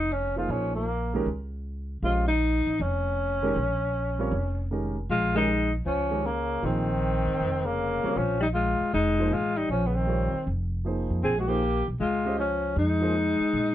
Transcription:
Already playing: upright bass F1, tenor saxophone D#4
0.12 tenor saxophone C#4
0.36 grand piano F3 A#3 D#4 G#4 C5, tenor saxophone F4
0.49 upright bass A#1, tenor saxophone C#4
0.75 tenor saxophone A#3
1.14 grand piano D#3 G#3 C#4 G4 A#4
1.26 upright bass C#2
2.02 upright bass A#1, grand piano G#3 C#4 G4 C5 D#5, tenor saxophone F4
2.28 tenor saxophone D#4
2.67 upright bass A1
2.80 upright bass F1, tenor saxophone C#4
3.42 grand piano D#3 G#3 C#4 G4 A#4
3.56 upright bass A#1
4.19 grand piano G3 C4 F4 A#4 C#5
4.32 upright bass F1
4.71 grand piano D#3 G#3 C#4 G4 A#4
5.09 upright bass A#1, alto saxophone G#3, tenor saxophone F4
5.34 grand piano D#3 G#3 C#4 G4 A#4, alto saxophone G#3, tenor saxophone D#4
5.86 upright bass C#2, alto saxophone F3, tenor saxophone C#4
6.11 grand piano D#3 G#3 C#4 G4 A#4
6.25 alto saxophone C#3, tenor saxophone A#3
6.62 upright bass A#1, alto saxophone D#3, grand piano F3 A#3 D#4 G#4 C5, tenor saxophone C4
7.27 upright bass G#1
7.40 upright bass F1
7.65 alto saxophone C#3, tenor saxophone A#3
8.03 grand piano G3 C4 F4 A#4 C#5, muted upright bass stroke
8.16 upright bass A#1, alto saxophone F3, tenor saxophone C#4
8.40 alto saxophone G3, tenor saxophone D#4
8.54 alto saxophone G#3, tenor saxophone F4
8.81 muted upright bass stroke
8.93 upright bass F1, alto saxophone G#3, tenor saxophone D#4
9.19 grand piano F3 A#3 D#4 G#4 C5
9.31 upright bass A1, alto saxophone G#3, tenor saxophone F4
9.57 alto saxophone G3, tenor saxophone D#4
9.69 upright bass A#1, alto saxophone F3, tenor saxophone C#4
9.87 alto saxophone C#3, tenor saxophone B3
9.95 alto saxophone D#3, tenor saxophone C4
10.07 grand piano G3 C4 F4 A#4 C#5
10.34 muted upright bass stroke
10.47 upright bass F1
10.85 grand piano F3 A#3 D#4 G#4 C5
11.10 upright bass F2
11.23 upright bass A#1, alto saxophone C4, tenor saxophone G#4
11.37 alto saxophone G#3, tenor saxophone F#4
11.47 grand piano F3 A#3 D#4 G#4 C5, alto saxophone A#3, tenor saxophone G4
11.88 upright bass B1
12.00 upright bass C#2, alto saxophone G#3, tenor saxophone F4
12.25 grand piano G#3 C#4 G4 C5 D#5
12.38 alto saxophone F3, tenor saxophone C#4
12.75 upright bass F2, alto saxophone G#3, tenor saxophone D#4
13.01 grand piano F3 A#3 D#4 G#4 C5
13.40 muted upright bass stroke
13.53 upright bass A#2

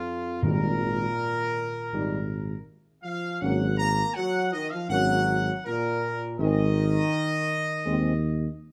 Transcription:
Already playing: trombone section F2, trumpet section F4
0.43 tuba G#1, timpani G#2, trombone section A#2, french horn section G3 D#4, trumpet section A#4
1.93 tuba G#1, french horn section G3 D#4
3.03 trombone section F3, trumpet section F5
3.41 tuba G#1, trombone section F#3, french horn section A#3 C#4, trumpet section F#5
3.78 trombone section A#3, trumpet section A#5
4.14 trombone section F#3, trumpet section F#5
4.52 trombone section D#3, trumpet section D#5
4.70 trombone section F3, trumpet section F5
4.89 tuba G#1, trombone section F#3, french horn section A#3 C#4, trumpet section F#5
5.65 trombone section A#2, trumpet section A#4
6.38 tuba G#1, trombone section D#3, french horn section G#3 C4, trumpet section D#5
7.85 tuba D#2, french horn section G#3 C4

